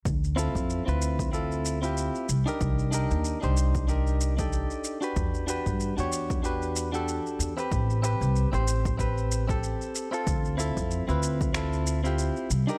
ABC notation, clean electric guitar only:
X:1
M:4/4
L:1/16
Q:"Swing 16ths" 1/4=94
K:Ddor
V:1 name="Clean electric guitar"
z2 [CEFA]3 [CEFB]3 [CEFA]3 [CEFG]3 z [D_EG_B]- | [D_EG_B]2 [DEGB]3 [DEGc]3 [DEGB]3 [DEGA]4 [D^FG=B]- | [D^FGB]2 [DFGB]3 [DFG^c]3 [DFGB]3 [DFGA]4 [=CEGB]- | [CEGB]2 [CEGB]3 [CEGc]3 [CEGB]3 [CEGA]4 [CEFA]- |
[CEFA]2 [CEFA]3 [CEFB]3 [CEFA]3 [CEFG]3 z [D_EG_B] |]